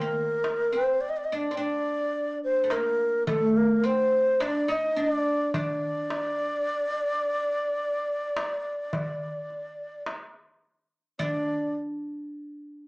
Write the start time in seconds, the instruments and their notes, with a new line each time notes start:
Already playing: ney A#4
0.01 oud A#3
0.44 darbuka tek
0.73 oud C4, ney C5
1.01 ney D5
1.09 ney D#5
1.17 ney D5
1.25 ney D#5
1.32 oud D4, ney D5
1.51 oud C4
1.57 oud D4, ney D5
2.44 ney C5
2.64 oud A3
2.70 oud A#3, ney A#4, darbuka tek
3.27 oud A3, ney A4, darbuka dum
3.57 ney A#4
3.84 oud C4, ney C5
4.40 oud D4, ney D5, darbuka tek
4.68 oud D#4, ney D#5
4.96 oud D4, ney D#5, darbuka ka
5.12 ney D5
5.54 oud D4, ney D5, darbuka dum
6.10 darbuka tek
8.37 darbuka tek
8.93 darbuka dum
9.50 darbuka ka
10.06 darbuka tek
11.19 oud D4, ney D5, darbuka dum